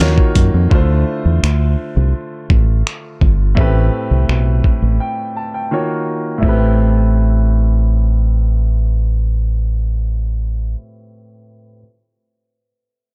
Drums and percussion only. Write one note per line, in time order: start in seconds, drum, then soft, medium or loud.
0.00 snare loud
0.00 closed hi-hat medium
0.18 kick loud
0.35 kick medium
0.35 closed hi-hat medium
0.71 kick loud
1.44 finger snap loud
2.50 kick loud
2.87 finger snap loud
3.21 kick medium
3.57 kick loud
4.29 finger snap loud
4.64 kick medium
6.43 kick medium
6.43 crash medium